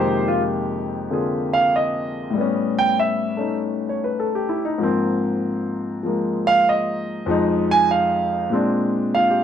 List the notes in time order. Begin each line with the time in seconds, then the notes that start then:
Already playing: F2 C3 D#3 G#3 A#3 G4 C5
0.28 F4
1.10 D3 A#3 C4 F4 G#4
1.53 F5
1.76 D#5
2.30 A2 G3
2.38 B3 C#4
2.79 G5
2.99 E5
3.37 A3 C#4 D#4
3.89 C#5
4.04 B4
4.20 A4
4.35 G4
4.49 E4
4.65 D#4
4.78 G#2 F3 A#3
4.83 C4
6.03 F3 G#3 A#3
6.47 F5
6.69 D#5
7.26 F2 F3 G#3
7.30 D#4
7.71 G#5
7.91 F5
8.50 A#2 G#3 C4
8.55 D4
9.15 F4 F5
9.30 G4